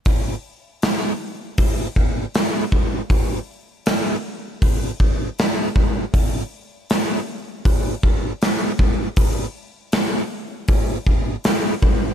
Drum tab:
HH |o-o-o-o-|o-o-o-o-|o-o-o-o-|o-o-o-o-|
SD |--o---o-|--o---o-|--o---o-|--o---o-|
BD |o---oo-o|o---oo-o|o---oo-o|o---oo-o|